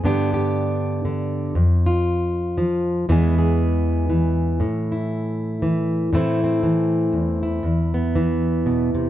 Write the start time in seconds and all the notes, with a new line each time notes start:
0.04 G2 D3 B3 D4 G4
0.34 G4
1.05 D3
1.55 F2
1.86 F4
2.58 F3
3.09 E2 E3 G#3 B3 G#4
3.38 G#4
4.09 E3
4.60 A2
4.92 E4
5.62 E3
6.13 A2 E3 A3 C4 E4
6.44 C4
6.63 E3
7.13 E2
7.43 E4
7.63 E2
7.94 B3
8.15 E3
8.66 B2
8.94 C3